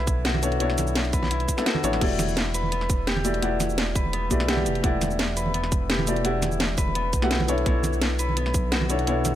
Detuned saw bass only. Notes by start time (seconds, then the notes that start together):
Already playing: B1
0.60 B1
1.84 A1
2.01 E1
3.43 E1
4.31 B1
4.66 E1
4.84 E1
6.25 E1
7.13 B1
7.48 B1
7.66 B1
9.07 B1